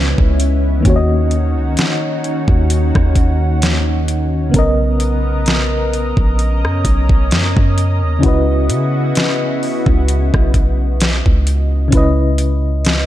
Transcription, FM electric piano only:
Already playing: C#3 G#3 B3 E4 D#5
0.80 D#3 A#3
0.85 C#4 F#4
0.90 C#5
0.96 D#5
4.49 C#3 B3
4.54 C#4 A#4
4.59 D#5
8.19 C#3 C#4 E4
8.24 F#4 B4 D#5
11.88 C#3 C#4
11.93 E4 B4
11.97 D#5

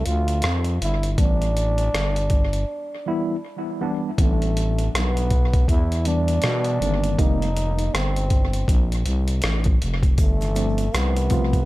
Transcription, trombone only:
0.05 F4
0.81 E4
1.13 E4
1.18 D4
4.22 A3
4.96 B3
5.70 E4
6.07 D4
7.19 D#4
7.94 C4
10.21 A3
10.96 B3

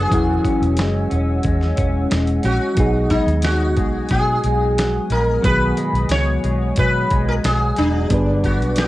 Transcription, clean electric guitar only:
Already playing: F#3 B3 D4
0.12 E3 F#4
0.45 C#4
0.78 G#3
1.10 C#4
1.43 G#3
1.76 C#4
2.10 G#3
2.43 C#4
2.78 D#4
3.10 G#3
3.44 F#3
3.78 G#3
4.11 F#3
4.44 G#3
4.78 F#3
5.10 G#3
5.42 B2
5.77 G#3
6.11 F#3
6.44 G#3
6.78 F#3
7.11 G#3
7.44 F#3
7.77 G#3
8.11 D4
8.44 B3
8.77 F#3

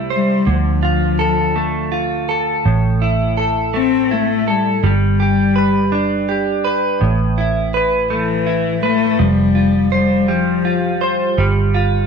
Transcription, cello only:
0.14 G3
0.49 F3
3.78 C4
4.13 A3
4.50 G3
4.87 G3
8.13 E3
8.85 A3
9.21 G3
9.94 G3
10.29 F3

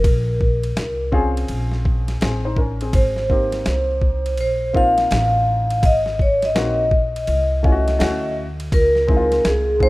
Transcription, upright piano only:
1.12 C4 C#4 F4 G#4
2.21 C4 G#4
2.45 D#4 C5
2.58 C#4 A#4
2.82 C4 G#4
3.29 A#3 C4 D#4 G4
4.73 A#3 C4 D#4 F4
6.55 A#3 C4 D#4 F#4
7.63 A3 C#4 E4 F4
7.72 F#4
7.99 A3 C#4 E4 F#4
9.07 G#3 C4 D#4 E4
9.17 F4
9.79 G#3 C4 D#4 F4

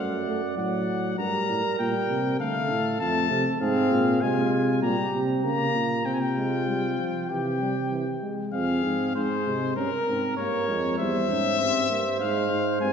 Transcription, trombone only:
Already playing: A3
0.27 A3
0.58 F#3
1.18 G3
1.80 G3
2.40 A3
3.01 A3
3.61 C4
4.22 G#3
4.83 G3
5.44 A#3
6.06 C4
6.37 G#3
6.68 G3
6.99 F3
7.30 E3
7.61 G3
7.91 E3
8.22 G#3
8.53 C4
9.15 C4
9.45 G#3
9.76 C#4
10.07 C4
10.38 A#3
10.68 G#3
10.98 G3
11.29 C#4
11.60 C4
11.90 A#3
12.21 G#3
12.82 C4

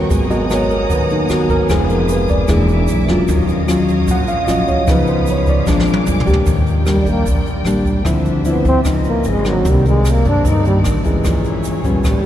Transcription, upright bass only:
0.10 G#1
0.90 D#2
1.29 D#2
1.49 G#1
1.70 F1
2.49 E1
2.89 B1
3.08 E1
3.28 D#2
4.08 A#1
4.48 A#1
4.68 D#2
4.87 C#2
5.67 A#1
6.08 F2
6.27 D2
6.47 D#2
7.05 A#1
7.26 A#1
7.64 A#1
8.05 D2
8.65 D2
8.85 C#2
9.25 G#1
9.65 C2
10.25 G2
10.45 G2
10.84 A1
11.25 A#1
11.84 A#1
12.05 A1

